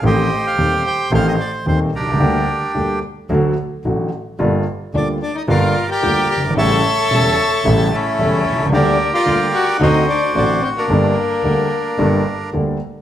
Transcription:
<<
  \new Staff \with { instrumentName = "Bandoneon" } { \time 4/4 \key g \minor \tempo 4 = 110 << { ees''8. f''8. g''8 f''16 ees''16 d''8 c''8 bes'8~ | bes'4 r2. | r4 d''8 d''16 ees''16 f''8. g''8. g''8 | a''2~ a''8 a'4. |
d''8. f''8. fis''8 ees''8 d''8 d''8 c''16 bes'16~ | bes'2. r4 | } \\ { <g' c''>8. c''4~ c''16 c''4. <d' g'>8~ | <d' g'>4. r2 r8 | r2 <bes' d''>8. <bes' d''>4~ <bes' d''>16 | <cis'' e''>2~ <cis'' e''>8 <cis' e'>4. |
<g' bes'>8. <bes' d''>4~ <bes' d''>16 <fis' c''>4.~ <fis' c''>16 d'16~ | d'2. r4 | } >> }
  \new Staff \with { instrumentName = "Violin" } { \time 4/4 \key g \minor r1 | r1 | r4 d'8 d'16 ees'16 f'8. g'8. g'8 | a'2~ a'8 a4. |
d'8. f'8. fis'8 ees'8 d'8 d'8 c'16 bes16~ | bes2. r4 | }
  \new Staff \with { instrumentName = "Grand piano" } { \clef bass \time 4/4 \key g \minor <a,, a, ees a c' g'>8 r8 <ees,, ees, ees a c' g'>8 r8 <a,, a, ees a c' g'>8 r8 <ees,, ees, ees a c' g'>8 r32 b,,32 c,32 cis,32 | <d, d g bes g'>8 r8 <d, d g bes g'>8 r8 <d, d fis a fis'>8 r8 <a,, a, d fis a fis'>8 r8 | <g,, g, d g bes f'>8 r8 <d, d g bes f'>8 r8 <g,, g, d g bes f'>8 r8 <d, d g bes f'>8 r32 fis,,32 g,,32 aes,,32 | <a,, a, cis g a e'>8 r8 <e,, e, cis g a e'>8 r8 <a,, a, cis g a e'>8 r8 <e,, e, cis g a e'>8 r32 b,,32 c,32 cis,32 |
<d, d g bes g'>8 r8 <d, d g bes g'>8 r8 <d, d a c' fis'>8 r8 <a,, a, d a c' fis'>8 r8 | <g,, g, g bes d' a'>8 r8 <d, d g bes d' a'>8 r8 <g,, g, g bes d' a'>8 r8 <d, d g bes d' a'>8 r8 | }
  \new Staff \with { instrumentName = "Double bass" } { \clef bass \time 4/4 \key g \minor a,,8 r8 ees,8 r8 a,,8 r8 ees,8 c,8 | d,8 r8 d,8 r8 d,8 r8 a,,8 r8 | g,,8 r8 d,8 r8 g,,8 r8 d,8 g,,8 | a,,8 r8 e,,8 r8 a,,8 r8 e,,8 c,8 |
d,8 r8 d,8 r8 d,8 r8 a,,8 r8 | g,,8 r8 d,8 r8 g,,8 r8 d,8 r8 | }
>>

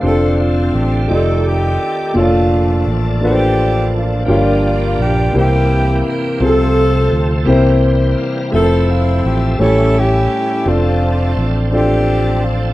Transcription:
<<
  \new Staff \with { instrumentName = "Grand piano" } { \time 6/8 \key f \major \tempo 4. = 56 <c' d' f' g' a' d''>4 r8 <a ees' f' g' d''>4 r8 | <bes, d' f' a' des'' d''>4 r8 <bes d' f' a' b' c''>4 r8 | <bes d' f' g' des'' d''>4 r8 <bes c' e' g' c''>4 r8 | <c' f' aes' a'>4 r8 <bes c' e' g' c''>4 r8 |
<f a c' bes' c'' e''>4 r8 <a cis' e' g' cis''>4 r8 | <c' d' f' a' d''>4 r8 <c' d' f' a' d''>4 r8 | }
  \new Staff \with { instrumentName = "Grand piano" } { \clef bass \time 6/8 \key f \major r2. | r2. | g,4. c4. | c4. c4. |
r4. a,4. | r2. | }
  \new Staff \with { instrumentName = "Saxophone section" } { \time 6/8 \key f \major << { a'8 f'8 g'8 a'8 g'4 | f'4 r8 g'4 f'8 | f'4 g'8 g'4 bes'8 | a'4. r4. |
a'8 f'8 g'8 a'8 g'4 | f'4 r8 g'4 f'8 | } \\ { <c' d'>4. <c' ees'>8 <c' ees'>4 | <a d'>4. <bes d'>4. | <bes d'>4. <bes e'>4. | <c' f'>4. r4. |
<c' e'>4. <cis' e'>8 <cis' e'>4 | <a c'>4. <c' d'>4. | } >> }
  \new Staff \with { instrumentName = "Tonewheel organ" } { \time 6/8 \key f \major << { r2. | r2. | r2. | r2 c''8 f''8 |
r2. | r2. | } \\ { <d a c' f'>4. <ees a g' d''>4. | <f d' a'>2. | <f bes d' g'>4. <e bes c' g'>4. | <f a c' a'>4. <e g c' bes'>4. |
<f c' aes' a' e''>4. <g cis' e' a'>4. | <f c' d' a'>2. | } >> }
  \new Staff \with { instrumentName = "Fingered electric bass" } { \clef bass \time 6/8 \key f \major f,,4 a,,8 f,,4 r8 | f,,4 a,,2 | g,,4 bes,,8 c,4 r8 | c,4 d,8 c,4 r8 |
f,,4 a,,8 a,,4 r8 | f,,4 a,,2 | }
>>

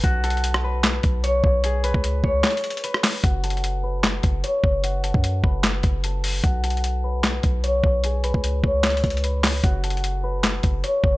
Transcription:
<<
  \new Staff \with { instrumentName = "Harp" } { \time 4/4 \key fis \minor \tempo 4 = 150 fis'8 a'4 b'4. cis''4 | gis'8 b'4 cis''4. b'8 r8 | fis'8 a'4 b'4. cis''4 | fis'8 a'4 b'4. a'8 r8 |
fis'8 a'4 b'4. cis''4 | gis'8 b'4 cis''4. b'8 r8 | fis'8 a'4 b'4. cis''4 | }
  \new Staff \with { instrumentName = "808-style bass" } { \clef bass \time 4/4 \key fis \minor b,,2~ b,,8 b,,4 b,,8~ | b,,8. cis,8. cis,8 r2 | fis,,2~ fis,,8 fis,,8 r8 fis,,8~ | fis,,8. fis,8. fis,,4 fis,,4. |
b,,2~ b,,8 b,,4 b,,8~ | b,,8. cis,8. cis,4 cis,4. | fis,,2~ fis,,8 fis,,8 r8 fis,,8 | }
  \new DrumStaff \with { instrumentName = "Drums" } \drummode { \time 4/4 \tuplet 3/2 { <hh bd>16 r16 r16 hh16 hh16 hh16 } hh16 ss8. <hc hh sn>8 <hh bd>8 hh8 bd8 | hh8 hh16 bd16 hh8 bd8 \tuplet 3/2 { <hc hh sn>16 hh16 hh16 hh16 hh16 hh16 } hh16 ss16 <hc hho sn>8 | \tuplet 3/2 { <hh bd>16 r16 r16 hh16 hh16 hh16 } hh4 <hc hh sn>8 <hh bd>8 hh8 bd8 | hh8 hh16 bd16 hh8 bd8 <hc hh sn>8 <hh bd>8 hh8 hho8 |
\tuplet 3/2 { <hh bd>16 r16 r16 hh16 hh16 hh16 } hh4 <hc hh sn>8 <hh bd>8 hh8 bd8 | hh8 hh16 bd16 hh8 bd8 \tuplet 3/2 { <hc hh sn>16 hh16 hh16 <hh bd>16 hh16 hh16 } hh8 <hc hho sn>8 | \tuplet 3/2 { <hh bd>16 r16 r16 hh16 hh16 hh16 } hh4 <hc hh sn>8 <hh bd>8 hh8 bd8 | }
>>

